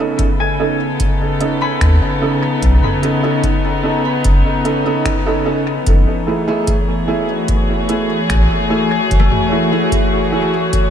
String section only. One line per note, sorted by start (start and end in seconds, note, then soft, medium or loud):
0.00 5.87 C#3 medium
0.00 8.47 B3 medium
0.14 5.87 A4 medium
0.94 7.86 D#4 medium
5.86 10.90 E3 medium
6.57 10.90 A3 medium
6.57 10.90 G#4 medium
7.20 10.90 F#4 medium